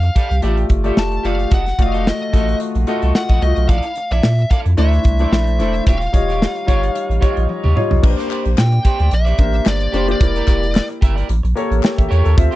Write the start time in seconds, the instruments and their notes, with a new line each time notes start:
Already playing: sub bass F2, lead electric guitar F5
0.03 muted clean electric guitar stroke, closed hi-hat
0.15 clean electric guitar G4 A4 D5, kick, closed hi-hat
0.30 sub bass C2, muted clean electric guitar stroke, closed hi-hat
0.42 sub bass A1, grand piano A3 F4 G4 D5, clean electric guitar G4 A4 D5, closed hi-hat
0.57 muted clean electric guitar stroke, closed hi-hat
0.69 sub bass G1, muted clean electric guitar stroke, kick, closed hi-hat
0.84 grand piano A3 F4 G4 D5, clean electric guitar G4 A4 D5, closed hi-hat
0.97 sub bass F1, lead electric guitar A5, muted clean electric guitar stroke, snare
1.12 muted clean electric guitar stroke, closed hi-hat
1.23 sub bass F#1, grand piano A3 F4 G4 D5, clean electric guitar G4 A4 D5, lead electric guitar F5, closed hi-hat
1.39 muted clean electric guitar stroke, closed hi-hat
1.51 sub bass F1, clean electric guitar F#4 A4 D#5, lead electric guitar F#5, kick, closed hi-hat
1.66 muted clean electric guitar stroke, snare, closed hi-hat
1.78 sub bass F1, grand piano A3 F4 F#4 D5, lead electric guitar F5, muted clean electric guitar stroke, kick, closed hi-hat
1.86 grand piano D#5
1.93 clean electric guitar F#4 A4 D#5, closed hi-hat
2.07 lead electric guitar D#5, snare
2.20 muted clean electric guitar stroke, closed hi-hat
2.33 sub bass A1, grand piano A3 F4 F#4 D#5, clean electric guitar F#4 A4 D#5, kick, closed hi-hat
2.48 muted clean electric guitar stroke, closed hi-hat
2.60 muted clean electric guitar stroke, closed hi-hat
2.75 sub bass A#1, muted clean electric guitar stroke, closed hi-hat
2.87 grand piano A3 F4 F#4 D#5, clean electric guitar F#4 A4 D#5, closed hi-hat
3.02 sub bass C2, clean electric guitar F#4 A4 D#5, closed hi-hat
3.15 lead electric guitar F#5, muted clean electric guitar stroke, snare
3.29 sub bass A#1, clean electric guitar F#4 A4 D#5, kick, closed hi-hat
3.42 sub bass C2, grand piano A3 F4 F#4 D#5, lead electric guitar D#5, muted clean electric guitar stroke, closed hi-hat
3.56 sub bass B1, muted clean electric guitar stroke, closed hi-hat
3.68 sub bass A#1, clean electric guitar E4 A4 D5, lead electric guitar F5, kick, closed hi-hat
3.82 muted clean electric guitar stroke, closed hi-hat
3.95 muted clean electric guitar stroke, closed hi-hat
4.11 sub bass A#1, clean electric guitar E4 A4 D5, lead electric guitar E5, closed hi-hat
4.23 sub bass A#2, snare
4.38 muted clean electric guitar stroke, closed hi-hat
4.51 clean electric guitar E4 A4 D5, lead electric guitar F5, kick, closed hi-hat
4.66 sub bass F2, muted clean electric guitar stroke, closed hi-hat
4.77 sub bass D2, grand piano A3 D4 E4 C5, clean electric guitar E4 A4 D5, lead electric guitar E5, closed hi-hat
4.93 muted clean electric guitar stroke, closed hi-hat
5.04 sub bass C2, muted clean electric guitar stroke, kick, closed hi-hat
5.19 grand piano A3 D4 E4 C5, clean electric guitar E4 A4 D5, closed hi-hat
5.32 sub bass A#1, lead electric guitar E5, muted clean electric guitar stroke, snare
5.47 muted clean electric guitar stroke, closed hi-hat
5.59 sub bass E1, grand piano A3 D4 E4 C5, clean electric guitar E4 A4 D5, closed hi-hat
5.74 muted clean electric guitar stroke, closed hi-hat
5.86 sub bass D#1, clean electric guitar F4 G4 C#5, lead electric guitar F5, kick, closed hi-hat
6.01 muted clean electric guitar stroke, closed hi-hat
6.12 sub bass D#1, grand piano G3 D#4 F4 C#5, muted clean electric guitar stroke, kick, closed hi-hat
6.28 clean electric guitar F4 G4 C#5, closed hi-hat
6.42 snare
6.55 muted clean electric guitar stroke, closed hi-hat
6.66 sub bass G1, grand piano G3 D#4 F4 C#5, clean electric guitar F4 G4 C#5, kick, closed hi-hat
6.83 muted clean electric guitar stroke, closed hi-hat
6.95 muted clean electric guitar stroke, closed hi-hat
7.09 sub bass A1, muted clean electric guitar stroke, closed hi-hat
7.20 grand piano G3 D#4 F4 C#5, clean electric guitar F4 G4 C#5, kick, closed hi-hat
7.36 sub bass A#1, muted clean electric guitar stroke, closed hi-hat
7.48 grand piano D#5, muted clean electric guitar stroke, high tom
7.64 sub bass D#2, clean electric guitar F4 G4 C#5, mid tom
7.75 grand piano G3 D#4 F4 C#5 F5, muted clean electric guitar stroke, mid tom
7.90 sub bass B1, muted clean electric guitar stroke, floor tom
8.02 sub bass A#1, grand piano A#3 D4 G4 B4, muted clean electric guitar stroke, kick, crash
8.10 grand piano C5
8.17 clean electric guitar G4 C5 D5, snare, closed hi-hat
8.29 clean electric guitar G4 C5 D5, clap, closed hi-hat
8.45 sub bass A#1, muted clean electric guitar stroke, closed hi-hat
8.58 sub bass A#2, lead electric guitar G5, muted clean electric guitar stroke, snare, clap
8.72 muted clean electric guitar stroke, closed hi-hat
8.84 clean electric guitar G4 C5 D5, kick, closed hi-hat
8.99 sub bass D2, clean electric guitar G4 C5 D5, closed hi-hat
9.11 sub bass A#1, lead electric guitar E5, muted clean electric guitar stroke, closed hi-hat
9.25 clean electric guitar G4 C5 D5, closed hi-hat
9.38 sub bass A1, grand piano A#3 D4 G4 C5, muted clean electric guitar stroke, kick, closed hi-hat
9.53 muted clean electric guitar stroke, closed hi-hat
9.66 sub bass G1, lead electric guitar D5, snare, clap
9.80 muted clean electric guitar stroke, closed hi-hat
9.92 sub bass F1, grand piano A#3 D4 G4 C5, clean electric guitar G4 C5 D5, closed hi-hat
10.08 grand piano A#3 D4 G4 C5, muted clean electric guitar stroke, closed hi-hat
10.12 lead electric guitar D5
10.20 sub bass E1, grand piano A#3 E4 G4 D5, muted clean electric guitar stroke, kick, closed hi-hat
10.35 clean electric guitar G4 A#4 D5, closed hi-hat
10.47 sub bass E1, clean electric guitar G4 A#4 D5, kick, clap, closed hi-hat
10.62 muted clean electric guitar stroke, closed hi-hat
10.75 muted clean electric guitar stroke, snare, clap
10.89 muted clean electric guitar stroke, closed hi-hat
11.01 sub bass G1, clean electric guitar G4 A#4 E5, kick, closed hi-hat
11.16 clean electric guitar G4 A#4 D5, closed hi-hat
11.29 sub bass A1, muted clean electric guitar stroke, closed hi-hat
11.43 sub bass A#1, muted clean electric guitar stroke, closed hi-hat
11.55 grand piano A#3 G4 A4 C#5, closed hi-hat
11.70 sub bass A1, muted clean electric guitar stroke, closed hi-hat
11.82 grand piano G5, muted clean electric guitar stroke, snare, clap
11.97 sub bass A1, grand piano E5, muted clean electric guitar stroke, kick, closed hi-hat
12.09 sub bass E2, clean electric guitar G4 A#4 C#5, grand piano C#5, closed hi-hat
12.24 sub bass D#2, clean electric guitar G4 A#4 C#5, grand piano A4, closed hi-hat
12.37 sub bass D2, grand piano C4 F4 G4 E5, muted clean electric guitar stroke, kick, closed hi-hat
12.51 clean electric guitar G4 C5, closed hi-hat